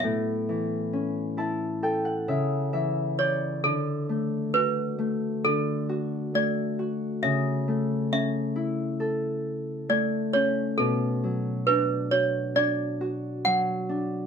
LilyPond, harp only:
\new Staff \with { instrumentName = "Harp" } { \time 4/4 \key d \major \tempo 4 = 67 << { r4. a''8 g''16 fis''16 e''8 e''8 d''8 | r1 | r1 | r1 | } \\ { a,8 e8 cis'8 e'8 a'8 cis8 e8 cis''8 | d8 a8 fis'8 a8 d8 fis'8 a8 fis'8 | cis8 a8 cis'8 e'8 a'4 a8 cis'8 | b,8 fis8 d'8 fis'8 d'8 fis'8 fis8 d'8 | } >> }